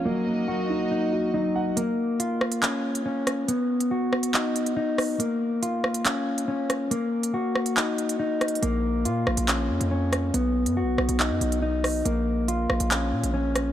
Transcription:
<<
  \new Staff \with { instrumentName = "String section" } { \time 4/4 \key bes \phrygian \tempo 4 = 140 <bes ees' ges' ees''>1 | r1 | r1 | r1 |
r1 | r1 | r1 | r1 | }
  \new Staff \with { instrumentName = "Clean electric guitar" } { \time 4/4 \key bes \phrygian bes4 ges'4 ees'4 ees'4 | bes4 f'4 des'4 des'4 | b4 fis'4 dis'4 dis'4 | bes4 f'4 des'4 des'4 |
bes4 ges'4 ees'4 ees'4 | bes4 f'4 des'4 des'4 | b4 fis'4 dis'4 dis'4 | bes4 f'4 des'4 des'4 | }
  \new Staff \with { instrumentName = "Grand piano" } { \time 4/4 \key bes \phrygian ges8 bes8 ges8 ees'4 ges'8 ges8 ges''8 | r1 | r1 | r1 |
r1 | r1 | r1 | r1 | }
  \new Staff \with { instrumentName = "808-style bass" } { \clef bass \time 4/4 \key bes \phrygian r1 | r1 | r1 | r1 |
r1 | bes,,4 bes,8 bes,,16 bes,,8. f,16 f,4~ f,16 | b,,8. fis,16. b,,16. b,,16 b,,8 fis,16 b,,4. | bes,,4. bes,,16 bes,,8. bes,16 bes,,4~ bes,,16 | }
  \new DrumStaff \with { instrumentName = "Drums" } \drummode { \time 4/4 r4 r4 r4 r4 | hh4 hh8 ss16 hh16 <hc hh>8. hh16 r8 <hh ss>8 | hh8. hh16 r8 ss16 hh16 hc8 hh16 hh16 r8 <hho ss>8 | hh4 hh8 ss16 hh16 <hc hh>8. hh16 r8 <hh ss>8 |
hh8. hh16 r8 ss16 hh16 hc8 hh16 hh16 \tuplet 3/2 { r16 r16 r16 <hh ss>16 hh16 hh16 } | hh4 hh8 ss16 hh16 <hc hh>8. hh16 r8 <hh ss>8 | hh8. hh16 r8 ss16 hh16 hc8 hh16 hh16 r8 <hho ss>8 | hh4 hh8 ss16 hh16 <hc hh>8. hh16 r8 <hh ss>8 | }
>>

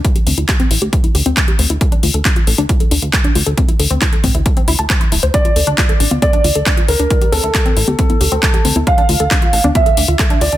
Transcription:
<<
  \new Staff \with { instrumentName = "Grand piano" } { \time 4/4 \key d \minor \tempo 4 = 136 r1 | r1 | r1 | d''2 d''4. bes'8~ |
bes'8 a'2.~ a'8 | f''2 e''4. d''8 | }
  \new Staff \with { instrumentName = "Synth arpeggio sound" } { \time 4/4 \key d \minor e'16 g'16 c'16 e'16 g'16 c'16 e'16 g'16 c'16 e'16 g'16 c'16 e'16 g'16 c'16 e'16 | a'16 d'16 f'16 a'16 d'16 f'16 a'16 d'16 f'16 a'16 d'16 f'16 a'16 d'16 f'16 a'16 | c'16 e'16 a'16 c'16 e'16 a'16 c'16 e'16 a'16 c'16 e'16 a''16 c''16 c'''16 e'16 c''16 | d'16 f'16 a'16 d'16 f'16 a'16 d'16 f'16 a'16 d'16 f'16 a'16 d'16 f'16 a'16 d'16 |
e'16 g'16 c'16 e'16 g'16 c'16 e'16 g'16 c'16 e'16 g'16 c'16 e'16 g'16 c'16 e'16 | a'16 d'16 f'16 a'16 d'16 f'16 a'16 d'16 f'16 a'16 d'16 f'16 a'16 d'16 f'16 a'16 | }
  \new Staff \with { instrumentName = "Analog synth bass" } { \clef bass \time 4/4 \key d \minor r8 d,16 d,16 r8 a,,16 d,16 r8 d,16 d,16 r8 d,16 d,16 | r8 d,16 d,16 r8 a,,16 d,16 r8 d,16 d,16 r8 d,16 d,16 | r8 d,16 d,16 r8 a,,16 d,16 r8 d,16 d,16 r8 d,,16 d,16 | r8 d,16 d,16 r8 a,,16 d,16 r8 d,16 d,16 r8 d,16 d,16 |
r8 d,16 d,16 r8 a,,16 d,16 r8 d,16 d,16 r8 d,16 d,16 | r8 d,16 d,16 r8 a,,16 d,16 r8 d,16 d,16 r8 d,16 d,16 | }
  \new DrumStaff \with { instrumentName = "Drums" } \drummode { \time 4/4 <hh bd>16 hh16 hho16 hh16 <hc hh bd>16 hh16 hho16 hh16 <hh bd>16 hh16 hho16 hh16 <hc hh bd>16 hh16 hho16 hh16 | <hh bd>16 hh16 hho16 hh16 <hc hh bd>16 hh16 hho16 hh16 <hh bd>16 hh16 hho16 hh16 <hc hh bd>16 hh16 hho16 hh16 | <hh bd>16 hh16 hho16 hh16 <hc hh bd>16 hh16 <hho bd>16 hh16 <hh bd>16 hh16 hho16 hh16 <hc hh bd>16 hh16 hho16 hh16 | <hh bd>16 hh16 hho16 hh16 <hc hh bd>16 hh16 hho16 <cgho hh>16 <cgho hh bd>16 hh16 hho16 hh16 <hc hh bd>16 hh16 hho16 hh16 |
<hh bd>16 hh16 hho16 hh16 <hc hh bd>16 hh16 hho16 <cgho hh>16 <hh bd>16 <cgho hh>16 hho16 hh16 <hc hh bd>16 hh16 hho16 <cgho hh>16 | <hh bd>16 hh16 hho16 hh16 <hc hh bd>16 hh16 hho16 cgho16 <cgho hh bd>16 hh16 hho16 hh16 <hc hh bd>16 hh16 hho16 hh16 | }
>>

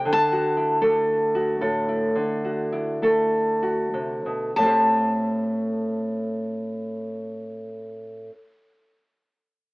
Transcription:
<<
  \new Staff \with { instrumentName = "Steel-string acoustic guitar" } { \time 4/4 \key a \dorian \tempo 4 = 46 a''2.~ a''8 r8 | a''1 | }
  \new Staff \with { instrumentName = "Nylon-string guitar" } { \time 4/4 \key a \dorian << { r16 fis'16 e'16 a'8 fis'16 a'16 e'8 fis'16 e'16 a'8 fis'8. | <a c' g' c''>1 | } \\ { d8. a8. a,8 d8. a8. c16 b,16 | a,1 | } >> }
>>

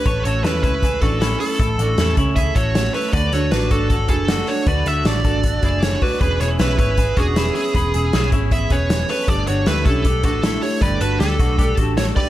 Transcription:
<<
  \new Staff \with { instrumentName = "Lead electric guitar" } { \time 4/4 \key e \mixolydian \tempo 4 = 156 b'8 cis''8 b'8 b'4 a'4 a'8~ | a'4. r8 e''8 cis''4 b'8 | d''8 cis''8 b'8 a'4 a'4 cis''8 | d''8 e''8 d''4. d''8 cis''8 b'8 |
b'8 cis''8 b'8 b'4 gis'4 gis'8~ | gis'4. r8 e''8 cis''4 b'8 | d''8 cis''8 b'8 a'4 a'4 cis''8 | d''8 b'8 a'4. r8 cis''8 d''8 | }
  \new Staff \with { instrumentName = "Clean electric guitar" } { \time 4/4 \key e \mixolydian <a' cis''>8 <fis' a'>8 <cis' e'>8 <cis' e'>8 <e' gis'>8 <d' fis'>8 <cis' e'>4 | <e' a'>8 <d' fis'>8 <cis' e'>8 <cis' e'>8 <e' gis'>8 <fis' a'>4 <a' cis''>8 | <fis' b'>8 <fis' a'>8 <d' fis'>8 <d' fis'>8 <fis' a'>8 <e' gis'>8 <d' fis'>4 | <fis' b'>8 <fis' a'>8 <d' fis'>8 <fis' a'>8 <fis' a'>8 <e' gis'>4 <d' fis'>8 |
<gis' b'>8 <e' gis'>8 <cis' e'>8 <cis' e'>8 <e' gis'>8 <d' fis'>8 <cis' e'>4 | <gis' b'>8 <e' gis'>8 <cis' e'>8 <cis' e'>8 <e' gis'>8 <gis' b'>4 <a' cis''>8 | <d' a'>8 <d' fis'>8 <a e'>8 <cis' e'>8 <d' g'>8 <d' fis'>8 <a e'>4 | <g' b'>8 <fis' a'>8 <d' g'>8 <d' fis'>8 <d' g'>8 <fis' a'>4 <g' b'>8 | }
  \new Staff \with { instrumentName = "Steel-string acoustic guitar" } { \time 4/4 \key e \mixolydian <a, e a cis' e'>8 <a cis' e'>8 <a, e a cis' e'>8 <a cis' e'>8 <e a cis' e'>8 <a cis' e'>8 <a, e a cis' e'>8 <a cis' e'>8 | <a, e a cis' e'>8 <a cis' e'>8 <a, e a cis' e'>8 <a cis' e'>8 <e a cis' e'>8 <a cis' e'>8 <a, e a cis' e'>8 <a cis' e'>8 | <d a d' fis'>8 <a d' fis'>8 <d a d' fis'>8 <a d' fis'>8 <d a d' fis'>8 <a d' fis'>8 <d a d' fis'>8 <a d' fis'>8 | <d a d' fis'>8 <a d' fis'>8 <d a d' fis'>8 <a d' fis'>8 <d a d' fis'>8 <a d' fis'>8 <d a d' fis'>8 <a d' fis'>8 |
<e b cis' gis'>8 <b cis' gis'>8 <e b cis' gis'>8 <b cis' gis'>8 <e b cis' gis'>8 <b cis' gis'>8 <e b cis' gis'>8 <b cis' gis'>8 | <e b cis' gis'>8 <b cis' gis'>8 <e b cis' gis'>8 <b cis' gis'>8 <e b cis' gis'>8 <b cis' gis'>8 <e b cis' gis'>8 <b cis' gis'>8 | <g a d' g'>8 <a d' g'>8 <g a d' g'>8 <a d' g'>8 <g a d' g'>8 <a d' g'>8 <g a d' g'>8 <a d' g'>8 | <g a d' g'>8 <a d' g'>8 <g a d' g'>8 <a d' g'>8 <g a d' g'>8 <a d' g'>8 <g a d' g'>8 <a d' g'>8 | }
  \new Staff \with { instrumentName = "Picked electric bass" } { \clef bass \time 4/4 \key e \mixolydian a,,8 a,,8 e,8 cis,4 a,,4 r8 | a,,8 a,,8 e,8 cis,4 a,,4 r8 | d,8 d,8 a,,8 gis,,4 fis,,4 r8 | d,8 d,8 a,,8 gis,,4 fis,,4 r8 |
e,,8 e,,8 b,,8 gis,,4 e,,4 r8 | e,,8 e,,8 b,,8 gis,,4 e,,4 r8 | g,,8 g,,8 d,8 b,,4 a,,4 r8 | g,,8 g,,8 d,8 b,,4 a,,4 r8 | }
  \new DrumStaff \with { instrumentName = "Drums" } \drummode { \time 4/4 <hh bd>8 hh8 <hh sn>8 <hh bd>8 <hh bd>8 <hh bd>8 <hh sn>8 hho8 | <hh bd>8 hh8 <hh sn>8 <hh bd>8 <hh bd>8 <hh bd>8 <hh sn>8 hho8 | <hh bd>8 <hh sn>8 <hh sn>8 <hh bd>8 <hh bd>8 <hh bd>8 <hh sn>8 hho8 | <hh bd>8 <hh sn>8 <hh sn>8 <hh bd>8 <hh bd>8 <hh bd>8 <hh sn>8 <hho bd>8 |
<hh bd>8 <hh sn>8 <hh sn>8 <hh bd>8 <hh bd>8 <hh bd>8 <hh sn>8 hho8 | <hh bd>8 hh8 <hh sn>8 <hh bd>8 <hh bd>8 <hh bd>8 <hh sn>8 hho8 | <hh bd>8 hh8 <hh sn>8 <hh bd>8 <hh bd>8 <hh bd>8 <hh sn>8 hho8 | <hh bd>8 hh8 <hh sn>8 <hh bd>8 <hh bd>8 <hh bd>8 <hh sn>8 <hho bd>8 | }
>>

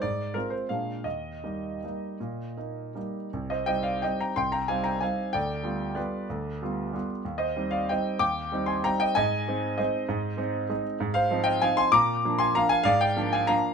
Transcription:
<<
  \new Staff \with { instrumentName = "Grand piano" } { \time 3/4 \key ees \major \tempo 4 = 188 d''4 bes'8 c''8 f''4 | ees''2.~ | ees''2~ ees''8 r8 | \key c \minor r8 <c'' ees''>8 <ees'' g''>8 <d'' f''>8 <ees'' g''>8 <g'' bes''>8 |
<g'' c'''>8 <g'' bes''>8 <f'' aes''>8 <g'' bes''>8 <f'' aes''>4 | <d'' g''>2 <b' d''>4~ | <b' d''>2~ <b' d''>8 r8 | r8 <c'' ees''>4 <d'' f''>8 <ees'' g''>4 |
<g'' d'''>4. <aes'' c'''>8 <g'' bes''>8 <ees'' g''>8 | <ees'' aes''>2 <c'' ees''>4~ | <c'' ees''>2~ <c'' ees''>8 r8 | \key bes \mixolydian r8 <c'' f''>4 <ees'' g''>8 <f'' aes''>8 <aes'' c'''>8 |
<bes'' d'''>4. <aes'' c'''>8 <f'' bes''>8 <f'' aes''>8 | <d'' f''>8 <d'' g''>4 <f'' aes''>8 <f'' bes''>4 | }
  \new Staff \with { instrumentName = "Grand piano" } { \time 3/4 \key ees \major aes,4 <aes c' f'>4 <bes, aes bes d'>4 | ees,4 <g bes ees'>4 <g bes ees'>4 | bes,4 <bes ees'>4 <g bes ees'>4 | \key c \minor c,4 <g c' ees'>4 <g c' ees'>4 |
c,4 <g c' ees'>4 <g c' ees'>4 | d,4 <g b f'>4 <g b f'>4 | d,4 <g b f'>4 <g b f'>4 | ees,4 <g c' ees'>4 <g c' ees'>4 |
ees,4 <g c' ees'>4 <g c' ees'>4 | aes,4 <aes c' ees'>4 <aes c' ees'>4 | aes,4 <aes c' ees'>4 <aes c' ees'>4 | \key bes \mixolydian aes,4 <f c' ees'>4 <f c' ees'>4 |
bes,4 <f bes d'>4 <f bes d'>4 | aes,4 <f bes d'>4 <f bes d'>4 | }
>>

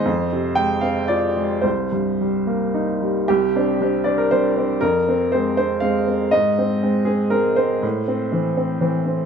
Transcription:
\new Staff \with { instrumentName = "Upright piano" } { \time 3/4 \key c \minor \tempo 4 = 118 << { c''4 g''8 f''8 d''4 | c''2~ c''8 r8 | g'4. d''16 bes'16 c''4 | bes'4 c''8 c''8 f''4 |
ees''4. aes'8 bes'8 c''8~ | c''4 r2 | } \\ { f,8 c8 aes8 c'8 f'8 aes8 | c,8 g,8 g8 bes8 ees'8 g8 | c,8 <c' d'>8 <g c' d'>8 <c' d'>8 <g c' d'>8 <c' d'>8 | f,8 c'8 <aes c'>8 c'8 <aes c'>8 c'8 |
aes,8 c'8 <aes c'>8 c'8 <aes c'>8 c'8 | a,8 c'8 <e c'>8 c'8 <e c'>8 c'8 | } >> }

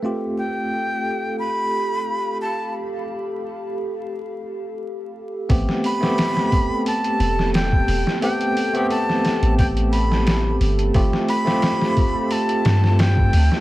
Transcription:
<<
  \new Staff \with { instrumentName = "Flute" } { \time 4/4 \key a \minor \tempo 4 = 88 r8 g''4. b''4. a''8 | r1 | r8 b''4. a''4 g''4 | g''4 a''4 g''8 b''4 r8 |
r8 b''4. a''4 g''4 | }
  \new Staff \with { instrumentName = "Ambient pad" } { \time 4/4 \key a \minor << { f''1~ | f''1 | a''1~ | a''1~ |
a''1 | } \\ { <g' a'>1~ | <g' a'>1 | <g' a'>1~ | <g' a'>1 |
<a f'>1 | } >> }
  \new Staff \with { instrumentName = "Synth drone" } { \time 4/4 \key a \minor r1 | r1 | <a a'>1~ | <a a'>1~ |
<a a'>1 | }
  \new Staff \with { instrumentName = "Tine electric piano" } { \time 4/4 \key a \minor <a c' f' g'>1 | r1 | <a b c' g'>8. <a b c' g'>2.~ <a b c' g'>16 | <a b c' g'>8. <a b c' g'>2.~ <a b c' g'>16 |
<a c' f' g'>8. <a c' f' g'>2.~ <a c' f' g'>16 | }
  \new Staff \with { instrumentName = "808-style bass" } { \clef bass \time 4/4 \key a \minor r1 | r1 | a,,16 r2 r16 e,,4 e,,16 r16 | r4. r16 a,,4.~ a,,16 g,,8 |
g,,16 r2 r16 g,4 d,16 r16 | }
  \new DrumStaff \with { instrumentName = "Drums" } \drummode { \time 4/4 r4 r4 r4 r4 | r4 r4 r4 r4 | <hho bd>16 sn16 hho16 sn16 <hho sn>16 sn16 <hho bd>8 hho16 hh16 hho16 sn16 <hho sn>16 bd16 hho16 sn16 | hho16 hh16 hho16 hh16 hho16 sn16 <hho sn>16 hh16 <hho bd>16 hh16 hho16 sn16 <hho sn>8 hho16 hh16 |
<hho bd>16 sn16 hho16 sn16 <hho sn>16 sn16 <hho bd>8 hho16 hh16 <hho sn>16 sn16 <hho sn>16 bd16 hho16 sn16 | }
>>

